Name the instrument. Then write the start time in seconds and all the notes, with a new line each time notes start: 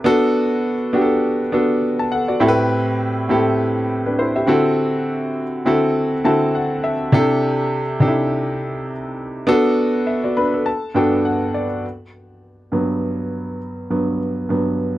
grand piano
0.04 B3 D4 F#4 A4
0.93 B3 D4 F#4 G4
1.01 A4
1.52 B3 D4 F#4 A4
1.99 A5
2.12 A4 F#5
2.28 F#4 D5
2.40 A2 C4 E4 G4 A4
2.48 B4
3.29 A2 C4 E4 G4 A4
4.06 D4 B4
4.19 E4 C5
4.36 G4 E5
4.47 D3 C4 E4 F#4 A4
5.65 D3 C4 E4 F#4 A4
6.24 D3 C4 E4 F#4 A4 A5
6.55 F#5
6.84 E5
7.12 C3 D4 E4 G4 A4
8.00 C3 D4 D#4 G4 A4
8.08 E4
9.47 B3 D4 F#4 A4
10.07 E5
10.24 F#4 D5
10.37 D4 B4 B5
10.54 A4
10.66 A5
10.94 G2 B3 D4 F#4 A4 G5
11.25 F#5
11.54 D5
12.72 G2 F#3 B3
13.90 G2 F#3 B3
14.49 G2 F#3 B3